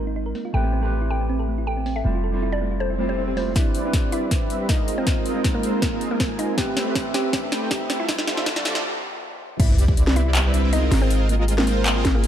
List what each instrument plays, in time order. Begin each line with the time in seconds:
Already playing: 808-style bass G#1, clean electric guitar G#3 C4 D#4 F4 A#4, downlifter
0.07 synth arpeggio sound D#4
0.16 synth arpeggio sound D#4
0.26 synth arpeggio sound A#4
0.35 synth arpeggio sound A#3, open hi-hat
0.45 synth arpeggio sound F4
0.53 808-style bass A1, clean electric guitar A3 C4 E4 G4 B4, synth arpeggio sound A4, synth pluck G5
0.64 synth arpeggio sound C4
0.73 synth arpeggio sound C4
0.81 clean electric guitar A3 C4 E4 G4, synth arpeggio sound A4
0.85 clean electric guitar B4
0.92 synth arpeggio sound A3
1.02 synth arpeggio sound E4
1.10 synth arpeggio sound A4, synth pluck G5
1.20 synth arpeggio sound C4
1.29 synth arpeggio sound C4
1.39 synth arpeggio sound A4
1.48 synth arpeggio sound A3
1.58 synth arpeggio sound E4
1.67 synth arpeggio sound A4, synth pluck G5
1.77 synth arpeggio sound C4
1.86 synth arpeggio sound C4, open hi-hat
1.96 synth arpeggio sound A4, synth pluck E5
2.04 808-style bass F1, clean electric guitar G3 C4 E4 F4 A4, synth arpeggio sound A3
2.15 synth arpeggio sound F4
2.24 synth arpeggio sound A4
2.32 clean electric guitar G3 C4 E4 F4, synth arpeggio sound E4
2.36 clean electric guitar A4
2.43 synth arpeggio sound E4
2.52 synth arpeggio sound A4, synth pluck D5
2.61 synth arpeggio sound A3
2.71 synth arpeggio sound F4
2.80 synth arpeggio sound A4, synth pluck C5, swell
2.90 synth arpeggio sound E4
2.98 clean electric guitar G3 C4 E4 F4 A4, synth arpeggio sound A3
3.09 synth arpeggio sound G4, synth pluck C5
3.18 synth arpeggio sound E4
3.28 synth arpeggio sound G4
3.36 clean electric guitar G3 C4 E4 F4 A4, synth arpeggio sound A3, synth pluck C5, open hi-hat
3.47 synth arpeggio sound A3
3.55 clean electric guitar G3 C4 D4 E4 B4, supersaw synth G3 C4 E4 B4 D5, synth pluck E4 E5, kick, snare, closed hi-hat, riser
3.75 supersaw synth G3 C4 E4 B4 D5, closed hi-hat
3.83 clean electric guitar G3 C4 D4 E4 B4
3.93 kick, snare, closed hi-hat
4.12 supersaw synth G3 C4 E4 B4 D5, synth pluck E4 E5, closed hi-hat
4.31 kick, snare, closed hi-hat
4.50 supersaw synth G3 C4 E4 B4 E5, closed hi-hat
4.60 supersaw synth G3 C4 E4 B4 E5
4.69 supersaw synth G#3 C4 F4 A#4 D#5, synth pluck D#4 D#5, kick, snare, closed hi-hat
4.88 closed hi-hat
4.98 supersaw synth G#3 C4 F4 A#4 D#5, synth pluck C4 C5
5.06 clean electric guitar G#3 C4 D#4 F4 A#4, kick, snare, closed hi-hat
5.26 supersaw synth G#3 C4 F4 A#4 D#5, closed hi-hat
5.33 clean electric guitar G#3 C4 D#4 F4
5.37 clean electric guitar A#4
5.44 kick, snare, closed hi-hat
5.54 synth pluck A#3 A#4
5.63 supersaw synth G#3 C4 F4 A#4 C5, closed hi-hat
5.82 synth pluck A#3 A#4, kick, snare, closed hi-hat
5.92 supersaw synth G#3 C4 F4 A#4 D#5
6.01 closed hi-hat
6.11 supersaw synth G#3 C4 F4 A#4 G#5, synth pluck A#3 A#4
6.20 kick, snare, closed hi-hat
6.39 synth pluck D#4 D#5, closed hi-hat
6.57 clean electric guitar A3 C4 E4 G4 B4, supersaw synth A3 C4 G4 B4 E5, synth pluck G4 G5, kick, snare, closed hi-hat
6.77 supersaw synth A3 C4 G4 B4 E5, snare, closed hi-hat
6.84 clean electric guitar A3 C4 E4 G4 B4
6.95 kick, snare, closed hi-hat
7.14 supersaw synth A3 C4 G4 B4 E5, synth pluck G4 G5, snare, closed hi-hat
7.33 kick, snare, closed hi-hat
7.52 supersaw synth A3 C4 G4 B4 G5, snare, closed hi-hat
7.62 supersaw synth A3 C4 G4 B4 G5
7.71 supersaw synth A3 C4 G4 B4 E5, synth pluck G4 G5, kick, snare, closed hi-hat
7.90 snare, closed hi-hat
8.00 supersaw synth G3 C4 F4 A4 E5, synth pluck E4 E5
8.08 clean electric guitar G3 C4 E4 F4 A4, kick, snare, closed hi-hat, noise sweep
8.19 snare
8.27 supersaw synth G3 C4 F4 A4 E5, snare, closed hi-hat
8.35 clean electric guitar G3 C4 E4 F4, snare
8.39 clean electric guitar A4
8.46 kick, snare, closed hi-hat
8.56 synth pluck D4 D5, snare
8.65 supersaw synth G3 C4 F4 A4 D5, snare, closed hi-hat
8.75 snare
9.60 808-style bass C2, supersaw synth G3 C4 E4 B4 D5, synth arpeggio sound B3, synth pluck E4 E5, digital synth lead D5, kick, closed hi-hat, crash, sub drop
9.69 synth arpeggio sound E4
9.78 supersaw synth G3 C4 E4 B4 D5, synth arpeggio sound G4, digital synth lead D5, closed hi-hat
9.88 synth arpeggio sound G4, kick
9.97 synth arpeggio sound D4, closed hi-hat
10.07 synth arpeggio sound B4, snare
10.16 supersaw synth G3 C4 E4 B4 D5, synth arpeggio sound B3, synth pluck E4 E5, digital synth lead D5, closed hi-hat
10.26 synth arpeggio sound E4
10.35 synth arpeggio sound G4, clap, closed hi-hat
10.45 synth arpeggio sound G4
10.54 supersaw synth G3 C4 E4 B4 E5, synth arpeggio sound D4, digital synth lead E5, closed hi-hat
10.64 supersaw synth G3 C4 E4 B4 E5, synth arpeggio sound B4, digital synth lead E5
10.73 supersaw synth G#3 C4 F4 A#4 D#5, synth arpeggio sound B3, synth pluck D#4 D#5, digital synth lead D#5, closed hi-hat
10.83 synth arpeggio sound E4
10.92 808-style bass G#1, synth arpeggio sound G#4, snare, open hi-hat
11.02 supersaw synth G#3 C4 F4 A#4 D#5, synth pluck C4 C5, synth arpeggio sound G#4, digital synth lead D#5
11.10 synth arpeggio sound D#4, closed hi-hat
11.20 synth arpeggio sound A#4
11.29 supersaw synth G#3 C4 F4 A#4 D#5, synth arpeggio sound A#3, digital synth lead D#5, closed hi-hat
11.39 synth arpeggio sound F4
11.48 synth arpeggio sound G#4, closed hi-hat
11.58 synth pluck A#3 A#4, synth arpeggio sound G#4, snare
11.67 supersaw synth G#3 C4 F4 A#4 C5, synth arpeggio sound D#4, digital synth lead C5, closed hi-hat
11.77 synth arpeggio sound A#4
11.86 synth pluck A#3 A#4, synth arpeggio sound A#3, clap, closed hi-hat
11.96 supersaw synth G#3 C4 F4 A#4 D#5, synth arpeggio sound F4, digital synth lead D#5
12.05 synth arpeggio sound G#4, kick, snare, closed hi-hat
12.15 supersaw synth G#3 C4 F4 A#4 G#5, synth pluck A#3 A#4, synth arpeggio sound G#4, digital synth lead G#5
12.24 synth arpeggio sound D#4, closed hi-hat